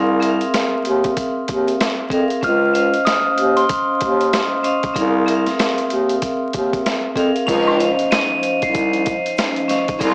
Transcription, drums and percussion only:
0.22 closed hi-hat medium
0.41 closed hi-hat soft
0.54 snare loud
0.54 closed hi-hat medium
0.85 closed hi-hat medium
1.04 kick medium
1.04 closed hi-hat medium
1.17 kick loud
1.17 closed hi-hat loud
1.48 kick loud
1.48 closed hi-hat medium
1.68 closed hi-hat medium
1.80 snare loud
1.80 closed hi-hat medium
2.10 kick medium
2.10 closed hi-hat medium
2.30 closed hi-hat soft
2.43 kick loud
2.43 closed hi-hat medium
2.75 closed hi-hat medium
2.94 closed hi-hat soft
3.07 snare loud
3.07 closed hi-hat medium
3.38 closed hi-hat medium
3.57 closed hi-hat soft
3.69 kick loud
3.69 closed hi-hat loud
4.01 kick loud
4.01 closed hi-hat medium
4.21 closed hi-hat medium
4.33 snare loud
4.33 closed hi-hat medium
4.64 closed hi-hat medium
4.83 kick loud
4.83 closed hi-hat soft
4.96 kick loud
4.96 closed hi-hat loud
5.28 closed hi-hat medium
5.46 snare soft
5.46 closed hi-hat soft
5.59 snare loud
5.59 closed hi-hat medium
5.78 closed hi-hat soft
5.90 closed hi-hat medium
6.09 closed hi-hat medium
6.22 kick loud
6.22 closed hi-hat loud
6.53 kick loud
6.53 closed hi-hat medium
6.73 kick medium
6.73 closed hi-hat medium
6.86 snare loud
6.86 closed hi-hat medium
7.16 kick medium
7.16 closed hi-hat medium
7.36 closed hi-hat soft
7.48 kick loud
7.48 closed hi-hat loud
7.48 shaker medium
7.67 high woodblock medium
7.80 closed hi-hat medium
7.80 shaker soft
7.99 closed hi-hat soft
8.11 snare loud
8.11 closed hi-hat medium
8.11 shaker medium
8.43 closed hi-hat medium
8.43 shaker medium
8.62 kick medium
8.62 closed hi-hat medium
8.74 kick loud
8.74 closed hi-hat loud
8.74 shaker medium
8.93 closed hi-hat soft
9.06 kick loud
9.06 closed hi-hat medium
9.06 shaker soft
9.26 closed hi-hat medium
9.37 snare loud
9.37 closed hi-hat medium
9.37 shaker medium
9.56 closed hi-hat soft
9.69 snare soft
9.69 closed hi-hat medium
9.69 shaker medium
9.88 kick loud
9.88 closed hi-hat soft
10.01 kick loud
10.01 closed hi-hat loud
10.01 shaker medium

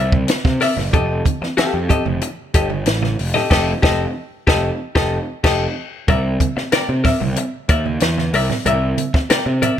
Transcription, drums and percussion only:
0.12 kick loud
0.12 high conga medium
0.28 snare loud
0.28 closed hi-hat medium
0.28 muted conga soft
0.44 kick loud
0.44 snare soft
0.44 high conga medium
0.60 snare soft
0.60 open hi-hat medium
0.60 muted conga soft
0.76 snare soft
0.76 low conga medium
0.93 kick loud
0.93 closed hi-hat medium
0.93 low conga medium
1.25 kick medium
1.25 closed hi-hat medium
1.25 muted conga soft
1.25 high conga medium
1.43 snare soft
1.58 snare loud
1.58 closed hi-hat medium
1.89 kick loud
1.89 closed hi-hat medium
1.89 muted conga soft
1.89 low conga medium
2.06 high conga medium
2.21 closed hi-hat medium
2.54 kick loud
2.54 closed hi-hat medium
2.70 high conga medium
2.86 snare loud
2.86 closed hi-hat medium
2.86 muted conga soft
3.02 snare soft
3.02 high conga medium
3.19 open hi-hat medium
3.34 snare soft
3.34 low conga medium
3.51 kick loud
3.51 snare loud
3.51 crash medium
3.83 kick loud
3.83 snare loud
4.47 kick loud
4.47 snare loud
4.96 kick loud
4.96 snare loud
5.44 kick loud
5.44 snare medium
5.44 crash medium
6.08 kick loud
6.08 closed hi-hat medium
6.08 muted conga soft
6.08 low conga medium
6.40 kick medium
6.40 closed hi-hat medium
6.40 high conga medium
6.57 snare soft
6.72 snare loud
6.72 closed hi-hat medium
6.72 muted conga soft
7.05 kick medium
7.05 snare soft
7.05 open hi-hat soft
7.05 low conga medium
7.21 high conga medium
7.36 closed hi-hat medium
7.36 muted conga soft
7.69 kick loud
7.69 closed hi-hat medium
7.86 high conga medium
8.00 snare medium
8.00 closed hi-hat medium
8.00 muted conga soft
8.18 snare soft
8.18 high conga medium
8.34 open hi-hat medium
8.50 snare soft
8.50 low conga medium
8.65 closed hi-hat medium
8.65 low conga medium
8.97 closed hi-hat medium
8.97 high conga medium
9.14 kick medium
9.14 snare soft
9.30 snare loud
9.30 closed hi-hat loud
9.62 closed hi-hat medium
9.62 low conga medium

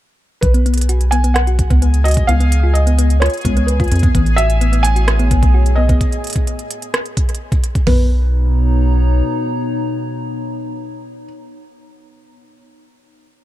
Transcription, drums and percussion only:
0.43 kick medium
0.43 closed hi-hat medium
0.54 closed hi-hat soft
0.66 closed hi-hat soft
0.74 closed hi-hat medium
0.78 closed hi-hat soft
0.81 closed hi-hat medium
0.89 closed hi-hat medium
1.01 closed hi-hat soft
1.12 closed hi-hat medium
1.24 closed hi-hat soft
1.36 cross-stick loud
1.36 closed hi-hat medium
1.47 closed hi-hat soft
1.59 kick loud
1.59 closed hi-hat medium
1.70 kick loud
1.70 closed hi-hat soft
1.82 closed hi-hat medium
1.94 closed hi-hat soft
2.05 closed hi-hat soft
2.08 closed hi-hat medium
2.11 closed hi-hat medium
2.14 kick loud
2.14 closed hi-hat medium
2.17 closed hi-hat soft
2.29 closed hi-hat medium
2.40 closed hi-hat soft
2.52 closed hi-hat loud
2.75 closed hi-hat medium
2.87 closed hi-hat soft
2.99 closed hi-hat medium
3.10 closed hi-hat soft
3.22 cross-stick loud
3.22 closed hi-hat medium
3.26 closed hi-hat medium
3.30 closed hi-hat soft
3.34 closed hi-hat soft
3.37 closed hi-hat soft
3.41 kick loud
3.41 closed hi-hat soft
3.45 closed hi-hat loud
3.57 closed hi-hat soft
3.68 closed hi-hat medium
3.80 kick loud
3.80 closed hi-hat soft
3.84 closed hi-hat soft
3.88 closed hi-hat soft
3.92 closed hi-hat medium
3.96 closed hi-hat soft
3.99 kick loud
3.99 closed hi-hat soft
4.03 closed hi-hat soft
4.15 kick medium
4.15 closed hi-hat medium
4.26 closed hi-hat soft
4.38 closed hi-hat medium
4.50 closed hi-hat soft
4.61 closed hi-hat medium
4.73 closed hi-hat soft
4.85 closed hi-hat medium
4.96 closed hi-hat soft
5.08 cross-stick loud
5.08 closed hi-hat medium
5.19 closed hi-hat soft
5.31 kick loud
5.31 closed hi-hat loud
5.43 kick loud
5.43 closed hi-hat soft
5.66 closed hi-hat soft
5.89 kick loud
5.89 closed hi-hat soft
6.01 kick medium
6.01 closed hi-hat medium
6.12 closed hi-hat soft
6.24 closed hi-hat soft
6.27 closed hi-hat medium
6.30 closed hi-hat medium
6.33 kick medium
6.33 closed hi-hat medium
6.36 closed hi-hat soft
6.47 closed hi-hat medium
6.59 closed hi-hat soft
6.71 closed hi-hat medium
6.82 closed hi-hat soft
6.94 cross-stick loud
6.94 closed hi-hat medium
7.06 closed hi-hat soft
7.17 kick loud
7.17 closed hi-hat medium
7.29 closed hi-hat soft
7.35 closed hi-hat medium
7.52 kick loud
7.52 closed hi-hat soft
7.64 closed hi-hat medium
7.75 kick loud
7.75 closed hi-hat soft
7.87 kick loud
7.87 floor tom loud
7.87 open hi-hat medium

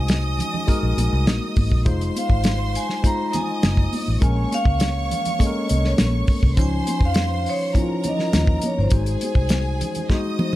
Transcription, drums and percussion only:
0.08 snare loud
0.08 closed hi-hat medium
0.08 high conga medium
0.39 closed hi-hat medium
0.39 low conga medium
0.54 low conga medium
0.68 kick medium
0.68 closed hi-hat medium
0.68 muted conga medium
0.98 closed hi-hat medium
0.98 muted conga medium
1.27 snare loud
1.27 closed hi-hat medium
1.27 high conga medium
1.56 kick loud
1.56 open hi-hat soft
1.56 high conga medium
1.72 kick medium
1.86 kick loud
1.86 closed hi-hat medium
1.86 muted conga soft
2.01 closed hi-hat soft
2.16 closed hi-hat medium
2.16 muted conga medium
2.30 kick medium
2.44 snare loud
2.44 closed hi-hat medium
2.44 high conga medium
2.75 closed hi-hat medium
2.89 snare soft
3.04 kick medium
3.04 closed hi-hat medium
3.04 muted conga soft
3.33 closed hi-hat medium
3.33 muted conga medium
3.33 low conga medium
3.63 snare loud
3.63 closed hi-hat medium
3.63 high conga medium
3.77 kick medium
3.93 open hi-hat soft
3.93 high conga medium
4.22 kick loud
4.22 closed hi-hat medium
4.52 closed hi-hat medium
4.52 muted conga medium
4.65 kick medium
4.80 snare loud
4.80 closed hi-hat loud
4.80 high conga medium
5.11 closed hi-hat medium
5.11 low conga medium
5.25 closed hi-hat medium
5.25 low conga medium
5.40 kick medium
5.40 closed hi-hat medium
5.40 muted conga medium
5.69 closed hi-hat medium
5.69 muted conga medium
5.84 snare soft
5.98 snare loud
5.98 closed hi-hat medium
5.98 high conga medium
6.27 kick loud
6.27 open hi-hat soft
6.27 high conga medium
6.43 kick medium
6.57 kick loud
6.57 closed hi-hat medium
6.57 muted conga soft
6.87 closed hi-hat medium
6.87 muted conga medium
7.01 kick medium
7.14 snare loud
7.14 closed hi-hat loud
7.14 high conga medium
7.46 open hi-hat medium
7.75 kick medium
7.75 closed hi-hat medium
7.75 muted conga medium
8.04 closed hi-hat medium
8.04 muted conga medium
8.04 low conga medium
8.19 snare soft
8.33 snare loud
8.33 closed hi-hat medium
8.33 high conga medium
8.47 kick loud
8.62 closed hi-hat medium
8.62 high conga medium
8.90 kick loud
8.90 closed hi-hat medium
8.90 muted conga soft
9.06 closed hi-hat soft
9.21 closed hi-hat medium
9.21 muted conga medium
9.35 kick medium
9.49 snare loud
9.49 closed hi-hat loud
9.49 high conga medium
9.81 closed hi-hat medium
9.81 low conga medium
9.95 closed hi-hat medium
9.95 low conga medium
10.10 kick medium
10.10 snare medium
10.10 muted conga medium
10.39 high tom medium
10.39 muted conga medium

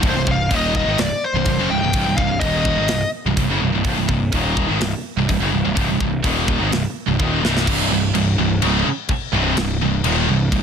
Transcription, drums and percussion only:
0.03 kick loud
0.03 open hi-hat medium
0.27 kick medium
0.51 kick medium
0.51 open hi-hat medium
0.75 kick medium
0.98 snare loud
0.98 open hi-hat medium
1.45 kick medium
1.45 open hi-hat soft
1.93 kick loud
1.93 open hi-hat medium
2.18 kick medium
2.41 kick medium
2.41 open hi-hat medium
2.65 kick medium
2.88 snare loud
2.88 open hi-hat medium
3.37 kick medium
3.37 open hi-hat medium
3.85 kick loud
3.85 open hi-hat medium
4.09 kick medium
4.32 kick medium
4.32 open hi-hat medium
4.57 kick medium
4.81 snare loud
4.81 open hi-hat soft
5.29 kick medium
5.29 open hi-hat medium
5.77 kick loud
5.77 open hi-hat medium
6.00 kick medium
6.24 kick medium
6.24 open hi-hat medium
6.48 kick medium
6.72 snare loud
6.72 open hi-hat medium
7.20 kick medium
7.20 high tom medium
7.45 snare medium
7.57 snare medium
7.67 kick loud
7.67 crash loud
7.67 crash medium
8.15 crash medium
8.62 crash medium
9.09 kick medium
9.09 crash medium
9.57 snare loud
9.57 crash medium
10.04 crash medium
10.52 kick medium
10.52 crash medium

